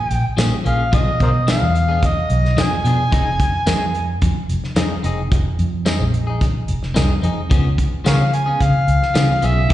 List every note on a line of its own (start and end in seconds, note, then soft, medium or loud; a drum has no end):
0.00 0.09 G#5 medium
0.09 0.23 A#1 medium
0.09 0.34 G5 medium
0.09 closed hi-hat medium
0.37 0.50 A#2 medium
0.37 0.54 F3 medium
0.37 0.54 A#3 medium
0.37 0.55 C#4 medium
0.37 0.55 G#4 medium
0.37 snare loud
0.37 closed hi-hat medium
0.37 tambourine loud
0.64 0.90 A#1 medium
0.64 0.81 F3 medium
0.64 0.82 A#3 medium
0.64 0.82 C#4 medium
0.64 0.83 G#4 medium
0.64 0.96 F5 medium
0.64 closed hi-hat medium
0.92 1.06 B1 loud
0.92 1.09 F3 medium
0.92 1.10 B3 medium
0.92 1.10 D4 medium
0.92 1.10 G#4 medium
0.92 1.21 D#5 medium
0.92 kick loud
0.92 closed hi-hat medium
1.20 1.58 B2 medium
1.20 1.29 A#4 medium
1.20 1.29 C5 medium
1.20 1.47 D#5 medium
1.20 kick medium
1.20 closed hi-hat soft
1.47 1.64 F3 medium
1.47 1.64 B3 medium
1.47 1.65 D4 medium
1.47 1.65 G#4 medium
1.47 2.07 F5 medium
1.47 snare loud
1.47 closed hi-hat medium
1.47 tambourine loud
1.62 2.23 E2 medium
1.75 closed hi-hat medium
1.88 2.06 B3 soft
1.88 2.06 D4 soft
1.88 2.05 G#4 soft
2.03 2.62 D#5 medium
2.03 kick medium
2.03 closed hi-hat medium
2.30 2.55 B1 medium
2.30 closed hi-hat medium
2.45 snare soft
2.57 2.70 F2 medium
2.57 2.74 F3 medium
2.57 2.74 B3 medium
2.57 2.74 D4 medium
2.57 2.75 G#4 medium
2.57 snare loud
2.57 closed hi-hat medium
2.57 tambourine loud
2.61 4.24 G#5 loud
2.71 muted fingered electric bass stroke soft
2.84 2.97 B2 medium
2.84 3.01 F3 medium
2.84 3.02 B3 medium
2.84 3.02 D4 medium
2.84 3.03 G#4 medium
2.84 closed hi-hat medium
3.12 3.37 F1 medium
3.12 3.29 C4 medium
3.12 3.29 D#4 medium
3.12 3.29 G#4 medium
3.12 kick loud
3.12 closed hi-hat medium
3.40 kick medium
3.40 closed hi-hat medium
3.66 4.16 F2 medium
3.66 3.83 C4 medium
3.66 3.84 D#4 loud
3.66 3.84 G#4 loud
3.66 snare loud
3.66 closed hi-hat medium
3.66 tambourine loud
3.95 closed hi-hat soft
4.22 4.35 F2 medium
4.22 kick medium
4.22 closed hi-hat medium
4.49 4.62 F1 medium
4.49 closed hi-hat medium
4.64 snare soft
4.76 4.89 F2 medium
4.76 4.93 C4 medium
4.76 4.94 D#4 medium
4.76 4.94 G#4 medium
4.76 snare loud
4.76 closed hi-hat medium
4.76 tambourine loud
5.03 5.29 F1 medium
5.03 5.20 C4 medium
5.03 5.21 D#4 medium
5.03 5.22 G#4 medium
5.03 closed hi-hat medium
5.32 5.44 F1 loud
5.32 kick loud
5.32 closed hi-hat medium
5.59 5.96 F2 medium
5.59 closed hi-hat medium
5.86 6.03 C4 medium
5.86 6.03 D#4 medium
5.86 6.04 G#4 medium
5.86 snare loud
5.86 closed hi-hat medium
5.86 tambourine loud
6.00 6.62 A#1 medium
6.14 closed hi-hat medium
6.27 6.45 D#4 soft
6.27 6.44 G#4 soft
6.41 kick medium
6.41 closed hi-hat medium
6.68 6.93 F1 medium
6.68 closed hi-hat medium
6.83 snare soft
6.94 7.09 C2 medium
6.94 7.12 C4 medium
6.94 7.12 D#4 medium
6.94 7.13 G#4 medium
6.94 snare loud
6.94 closed hi-hat medium
6.94 tambourine loud
7.10 muted fingered electric bass stroke soft
7.22 7.36 F2 medium
7.22 7.39 C4 medium
7.22 7.40 D#4 medium
7.22 7.41 G#4 medium
7.22 closed hi-hat medium
7.50 7.76 C#2 loud
7.50 7.67 F3 medium
7.50 7.67 B3 medium
7.50 7.68 C#4 medium
7.50 7.68 G#4 medium
7.50 kick loud
7.50 closed hi-hat medium
7.78 kick medium
7.78 closed hi-hat medium
8.04 8.55 C#3 medium
8.04 8.22 F3 medium
8.04 8.22 B3 medium
8.04 8.23 C#4 medium
8.04 8.23 G#4 medium
8.04 8.13 A#4 medium
8.04 8.16 C#5 medium
8.04 8.36 F5 medium
8.04 snare medium
8.04 closed hi-hat medium
8.04 tambourine loud
8.33 8.64 G#5 medium
8.33 closed hi-hat medium
8.46 8.64 B3 soft
8.46 8.64 C#4 medium
8.46 8.63 G#4 medium
8.60 8.73 C#3 medium
8.60 9.47 F5 medium
8.60 kick medium
8.60 closed hi-hat medium
8.88 9.00 C#2 medium
8.88 closed hi-hat medium
9.02 snare soft
9.14 9.28 C#3 medium
9.14 9.32 F3 medium
9.14 9.32 B3 medium
9.14 9.32 C#4 medium
9.14 9.33 G#4 medium
9.14 snare loud
9.14 closed hi-hat medium
9.14 tambourine loud
9.42 9.67 B1 medium
9.42 9.59 F3 medium
9.42 9.59 B3 medium
9.42 9.60 C#4 medium
9.42 9.60 G#4 medium
9.42 9.74 E5 medium
9.42 closed hi-hat medium
9.69 9.74 C2 loud
9.69 9.74 E3 medium
9.69 9.74 A#3 medium
9.69 9.74 D#4 medium
9.69 kick loud
9.69 closed hi-hat medium